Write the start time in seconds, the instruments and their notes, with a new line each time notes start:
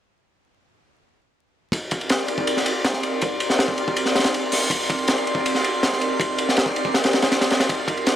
1.72 analog synth pad C4 D#4 G4 A#4 D5, synth texture C6, kick, ride
1.91 kick, ride
2.01 ride
2.09 snare, ride
2.19 ride
2.28 ride
2.38 kick
2.47 ride
2.57 snare
2.66 ride
2.84 snare, ride
2.94 snare
3.03 ride
3.21 analog synth pad C4 D#4 G4 A#4 D5, kick, ride
3.40 ride
3.50 snare
3.59 snare, ride
3.68 kick
3.78 ride
3.88 kick
3.96 ride
4.06 snare
4.15 snare, ride
4.19 snare, ride
4.24 snare, ride
4.34 ride
4.52 snare, open hi-hat
4.70 analog synth pad C4 D#4 G4 A#4 D5, kick, ride
4.90 kick, ride
4.99 ride
5.08 snare, ride
5.18 ride
5.27 ride
5.35 kick
5.46 ride
5.55 snare
5.64 ride
5.83 snare, ride
5.93 snare
6.01 ride
6.20 analog synth pad C4 D#4 G4 A#4 D5, kick, ride
6.38 ride
6.49 snare
6.56 snare, ride
6.66 kick
6.76 ride
6.85 kick
6.94 snare, ride
7.04 snare, ride
7.13 snare, ride
7.22 snare, ride
7.32 snare, ride
7.41 snare, ride
7.50 snare, ride
7.60 snare, ride
7.69 analog synth pad D#4 G4 A#4, kick, ride
7.88 kick, ride
7.97 ride
8.07 snare, ride